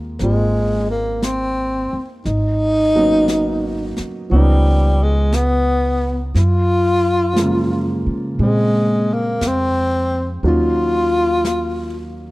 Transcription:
Already playing: upright bass D#2, grand piano G#3 A#3 C4 D#4 G4
0.19 upright bass G#1, tenor saxophone G#3, grand piano A#3 C4 F4, brush sweep, snare
0.90 tenor saxophone A#3
1.22 tenor saxophone C4, brush sweep, snare, hi-hat pedal
1.93 muted upright bass stroke
2.25 upright bass G#1, tenor saxophone D#4, brush sweep, snare
2.95 grand piano F#3 A#3 B3 C#4 D#4
3.28 brush sweep, snare, hi-hat pedal
3.97 muted upright bass stroke, snare
4.30 upright bass C#2, grand piano F3 B3 C#4, tenor saxophone G3, brush sweep
4.34 grand piano D#4
5.03 tenor saxophone G#3
5.33 tenor saxophone B3, brush sweep, snare, hi-hat pedal
6.35 upright bass F#2, tenor saxophone F4, brush sweep, snare
7.33 grand piano F3 G#3, brush sweep, snare, hi-hat pedal
7.39 grand piano C#3 A#3
7.45 grand piano F4
8.07 upright bass C#3
8.39 upright bass A#2, grand piano G#3, tenor saxophone G#3, brush sweep
8.43 grand piano C4
9.14 tenor saxophone A#3
9.41 upright bass F2, brush sweep, snare, hi-hat pedal
9.47 tenor saxophone C4
10.43 upright bass D#2, grand piano F#3 A#3 C#4 D#4 F4, tenor saxophone F4, brush sweep
11.45 brush sweep, snare, hi-hat pedal

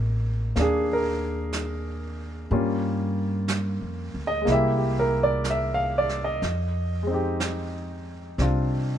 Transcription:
Already playing: upright bass A1, grand piano G#3 A#3 C4 D#4
0.56 upright bass D#2, grand piano A#3 D4, brush sweep, snare
0.61 grand piano G#4
0.93 grand piano A#4
1.53 brush sweep, snare, hi-hat pedal
2.50 upright bass G2, grand piano G3 A#3 C#4 F4, brush sweep
3.48 brush sweep, snare, hi-hat pedal
3.81 upright bass F2
4.14 upright bass D2
4.27 grand piano D#5
4.41 grand piano G#3 A#3
4.47 upright bass C2, grand piano E4, brush sweep, snare
4.52 grand piano G4 E5
4.77 grand piano G4
4.99 grand piano A#4
5.23 grand piano D5
5.44 brush sweep, snare, hi-hat pedal
5.51 grand piano E5
5.74 grand piano F5
5.98 grand piano D5
6.09 snare
6.24 grand piano D#5
6.42 upright bass F2, brush sweep, snare
7.03 grand piano G#3 C4
7.11 grand piano D#4 G4
7.40 brush sweep, snare, hi-hat pedal
8.38 upright bass C2, grand piano C4 D4 F4, brush sweep, snare

